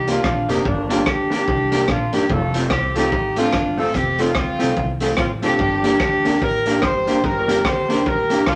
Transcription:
Already playing: upright bass C2
0.07 upright piano A#3 D4 G4 A#4, clean electric guitar A#3 D4 G4, horn section D4 F4, closed hi-hat
0.24 upright bass A#1, upright piano G4 A#4, kick, cross-stick
0.48 upright bass F1, upright piano A#3 D4 G4 A#4, clean electric guitar A#3 D4 G4, horn section C4 D#4, closed hi-hat
0.65 upright bass G1, horn section A#3 D4, kick
0.89 clean electric guitar A#3 D4 G4, upright piano A#3 D4 G4 A#4, horn section D4 F4, closed hi-hat
1.06 upright bass D2, horn section D4 G4, kick, cross-stick
1.30 upright piano A#3 D4 G4 A#4, clean electric guitar A#3 D4 G4, closed hi-hat
1.47 upright bass C2, kick
1.71 clean electric guitar A#3 D4 G4, upright piano A#3 D4 G4 A#4, closed hi-hat
1.88 upright bass A#1, horn section D4 F4, kick, cross-stick
2.13 upright bass G1, upright piano A#3 D4 G4 A#4, clean electric guitar A#3 D4 G4, horn section D#4 G4, closed hi-hat
2.30 upright bass F1, horn section F4 A4, kick
2.54 upright piano A3 C4 F4 A4, clean electric guitar A3 C4 F4, closed hi-hat
2.70 upright bass C2, horn section C4 G4, kick, cross-stick
2.95 clean electric guitar A3 C4 F4, upright piano A3 C4 F4 A4, horn section D#4 G4, closed hi-hat
3.12 upright bass A1, upright piano F4 A4, kick
3.36 clean electric guitar A3 C4 F4, upright piano A3 C4 F4 A4, horn section D4 F4, closed hi-hat
3.53 upright bass G1, kick, cross-stick
3.78 clean electric guitar A3 C4 F4, upright piano A3 C4 F4 A4, horn section F4 A4, open hi-hat
3.94 upright bass F1, horn section C4 G4, kick, hi-hat pedal
4.18 clean electric guitar A3 C4 F4, upright piano A3 C4 F4 A4, horn section D4 F4, closed hi-hat
4.35 upright bass D2, horn section C4 F4, kick, cross-stick
4.59 upright bass C2, clean electric guitar A3 C4 F4, upright piano A3 C4 F4 A4, closed hi-hat
4.76 upright bass C2, kick
5.00 clean electric guitar A3 C4 F4, upright piano A3 C4 F4 A4, closed hi-hat
5.17 upright bass A1, horn section C4 F4, kick, cross-stick
5.42 upright bass F1, clean electric guitar A3 C4 F4, upright piano A3 C4 F4 A4, horn section D4 G4, closed hi-hat
5.59 upright bass G1, kick
5.84 clean electric guitar A#3 D4 G4, upright piano A#3 D4 G4 A#4, closed hi-hat
6.00 upright bass D2, horn section D4 G4, kick, cross-stick
6.25 clean electric guitar A#3 D4 G4, upright piano A#3 D4 G4 A#4, closed hi-hat
6.42 upright bass A1, horn section G4 A#4, upright piano G4 A#4, kick
6.66 upright piano A#3 D4 G4 A#4, clean electric guitar A#3 D4 G4, closed hi-hat
6.82 upright bass G1, upright piano G4 A#4, horn section G4 C5, kick, cross-stick
7.07 clean electric guitar A#3 D4 G4, upright piano A#3 D4 G4 A#4, closed hi-hat
7.24 upright bass G1, horn section G4 A#4, kick
7.47 clean electric guitar A#3 D4 G4, upright piano A#3 D4 G4 A#4, closed hi-hat
7.65 upright bass D2, horn section G4 C5, kick, cross-stick
7.88 clean electric guitar A#3 D4 G4, upright piano A#3 D4 G4 A#4, closed hi-hat
8.06 upright bass A#1, horn section G4 A#4, kick
8.30 clean electric guitar A#3 D4 G4, upright piano A#3 D4 G4 A#4, closed hi-hat
8.46 upright bass F1, horn section D4 F4, kick, cross-stick

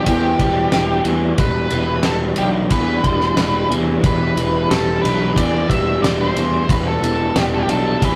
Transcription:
Already playing: overdriven electric guitar E2 G3 D4, tonewheel organ D4 E4 G4
0.05 picked electric bass E2, overdriven electric guitar E3, lead electric guitar G4, kick, ride
0.39 picked electric bass E1, overdriven electric guitar G3, kick, ride
0.72 picked electric bass E1, overdriven electric guitar D4, snare, ride
1.04 picked electric bass E2, overdriven electric guitar E3, ride
1.35 picked electric bass E1, overdriven electric guitar E2, tonewheel organ G3, kick, ride, low conga
1.39 lead electric guitar B4
1.70 picked electric bass E1, overdriven electric guitar E3, ride, high conga, low conga
1.88 high conga
2.03 picked electric bass E1, overdriven electric guitar G3, lead electric guitar A4, snare, ride
2.36 picked electric bass B1, overdriven electric guitar D4, lead electric guitar G4, ride, low conga
2.71 picked electric bass E2, overdriven electric guitar E3, lead electric guitar B4, kick, ride
3.04 picked electric bass E1, overdriven electric guitar G3, kick, ride
3.20 snare
3.36 picked electric bass E1, overdriven electric guitar D4, snare, ride
3.70 picked electric bass E2, overdriven electric guitar E3, ride, low conga
3.85 high conga
4.01 picked electric bass E1, overdriven electric guitar E2, kick, ride, low conga
4.06 lead electric guitar B4
4.36 picked electric bass E1, overdriven electric guitar E3, ride, high conga, low conga
4.53 high conga
4.69 picked electric bass E1, overdriven electric guitar G3, lead electric guitar A4, snare, ride
5.02 picked electric bass B1, overdriven electric guitar D4, lead electric guitar B4, ride, low conga
5.35 picked electric bass E2, overdriven electric guitar E3, lead electric guitar D5, kick, ride
5.68 picked electric bass E1, overdriven electric guitar G3, lead electric guitar E5, kick, ride
6.02 picked electric bass E1, overdriven electric guitar D4, lead electric guitar D5, snare, ride
6.19 lead electric guitar C5, high conga
6.35 picked electric bass E2, overdriven electric guitar E3, ride, low conga
6.51 high conga
6.66 picked electric bass E1, overdriven electric guitar E2, tonewheel organ E4, kick, ride, low conga
6.71 lead electric guitar B4
6.88 lead electric guitar A4
7.00 picked electric bass E1, overdriven electric guitar E3, ride, high conga, low conga
7.18 high conga
7.36 picked electric bass E1, overdriven electric guitar G3, lead electric guitar G4, snare, ride
7.55 lead electric guitar G4 A4
7.67 picked electric bass B1, overdriven electric guitar D4, lead electric guitar A4, ride, low conga
8.01 picked electric bass E2, overdriven electric guitar E3, lead electric guitar B4, kick, ride

